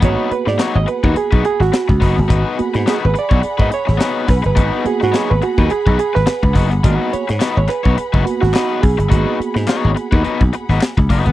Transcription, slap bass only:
X:1
M:4/4
L:1/16
Q:"Swing 16ths" 1/4=106
K:G#m
V:1 name="Slap bass" clef=bass
G,,, z2 G,, z G,,, z D,, z B,,, z G,,, z C,, F,,, =G,,, | G,,, z2 G,, z G,,, z B,,, z G,, z G,,, z2 B,,, =G,,, | G,,, z2 G,, z G,,, z D,, z B,,, z G,,, z C,, F,,, =G,,, | G,,, z2 G,, z G,,, z B,,, z F,,, z G,,, z2 B,,, =G,,, |
G,,, z2 G,, z G,,, z D,, z B,,, z G,,, z C,, F,,, =G,,, |]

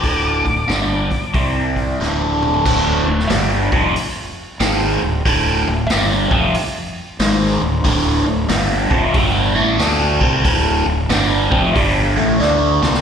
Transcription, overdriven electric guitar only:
X:1
M:4/4
L:1/8
Q:"Swing" 1/4=92
K:Clyd
V:1 name="Overdriven electric guitar" clef=bass
[D,,A,,D,] [D,,A,,] [G,,D,G,] z [C,G,C]2 [D,,A,,D,]2 | [D,,A,,D,] [D,,A,,] [G,,D,G,] [=F,,C,=F,] z2 [^G,,_E,^G,] [D,,A,,] | [D,,A,,D,] [D,,A,,] [G,,D,G,] [=F,,C,=F,] z2 [^G,,_E,^G,] [D,,A,,] | [D,,A,,D,] [D,,A,,] [G,,D,G,] [=F,,C,=F,] [G,,D,G,] [A,,E,A,] [D,A,D] [C,G,C] |
[D,,A,,D,] [D,,A,,] [G,,D,G,] [=F,,C,=F,] [G,,D,G,] [A,,E,A,] [D,A,D] [C,G,C] |]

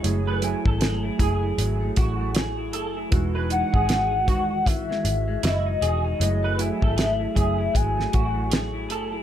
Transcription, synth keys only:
X:1
M:4/4
L:1/8
Q:"Swing 16ths" 1/4=78
K:F#dor
V:1 name="Synth keys"
[F,A,EG] [F,A,Eg]2 [F,A,EG]4 z | [E,G,DF] [E,G,DF]2 [D,E,G,F]4 z | [F,A,EG] [F,A,Eg]2 [F,A,EG]4 z |]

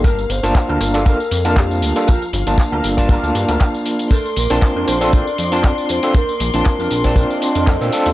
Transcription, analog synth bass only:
X:1
M:4/4
L:1/16
Q:"Swing 16ths" 1/4=118
K:Gm
V:1 name="Analog synth bass" clef=bass
G,,,2 G,,, G,,, z D,, G,,,3 z F,,4 D,, z | z2 G,,, G,,, z D,, G,,,3 D,, G,, D,, z4 | z2 B,,, B,,, z F,, B,,,3 z F,,3 z F,, z | z2 B,,, B,,, z F,, B,,,3 z2 F,, F,, B,, z E,, |]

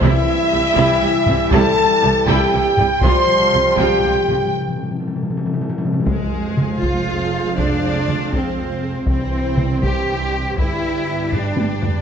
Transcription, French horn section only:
X:1
M:6/8
L:1/8
Q:3/8=80
K:Flyd
V:1 name="French horn section" clef=bass
E6 | A3 G3 | c3 G3 | z6 |
C,3 _A,3 | F,3 F,3 | E,3 C3 | G,3 G,3 |]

